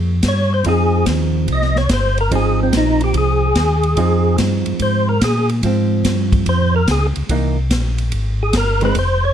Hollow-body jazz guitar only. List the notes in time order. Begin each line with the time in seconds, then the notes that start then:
Already playing: A#3 G#4 C5
0.66 F3 C4 D#4 G#4
2.31 F3 C4 D#4 G#4
3.97 F3 C4 D#4 G#4
5.64 F3 C4
7.30 E3 A#3 D#4
8.82 D#3 G#3 C4